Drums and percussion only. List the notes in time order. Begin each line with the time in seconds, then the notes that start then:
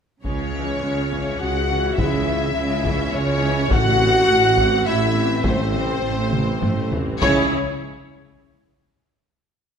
0.24 taiko
1.12 taiko
1.98 taiko
2.84 taiko
3.71 taiko
4.57 taiko
5.44 taiko
5.74 taiko mid
6.33 taiko mid
6.63 taiko low-mid
6.92 taiko low
7.22 taiko